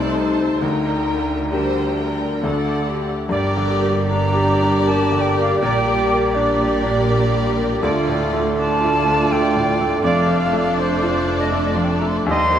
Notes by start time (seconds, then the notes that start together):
Already playing: C2 C3 A3 D#4 A4 C5 D5 A5
0.17 C5
0.61 D2 D3 D#4 A#4 G5
1.50 G3 D4 G4 A#4 C5 G5
1.98 A#4
2.43 D2 D3 A3 F#4 A4 D5 F#5
2.88 G4
3.29 G1 G2 G3 G4 A#4 D5
3.57 D3
3.82 A#3
4.09 D4 G4 A#4 D5 A#5
4.37 G4
4.62 D4
4.86 A#3 A5
5.12 D3
5.21 G5
5.38 A#3 F5
5.60 A#1 A#2 G3 G4 A#4 D5 G5
5.88 G3
6.12 A#3
6.34 D4 G4 A#4 D5
6.61 G4
6.85 D4
7.10 A#3
7.35 G3
7.57 A#3
7.81 D2 A3 F4 A4 D5
8.08 A2
8.33 A3
8.57 D4 F4 A4 D5 A5
8.84 F4
9.07 D4
9.32 A3 G5
9.57 A2
9.80 A3
10.01 F1 F2 A3 D4 F4 A4 D5 F5
10.26 F3
10.53 A3
10.77 D4 C5
11.02 F4
11.27 D4
11.41 D#5
11.52 A3 D5
11.66 D#5
11.75 F3 F5
11.84 G5
11.92 A5
11.99 A3 A#5
12.08 C6
12.18 D6
12.26 D#2 G3 D#4 G4 C5 D#5 C6
12.50 D#3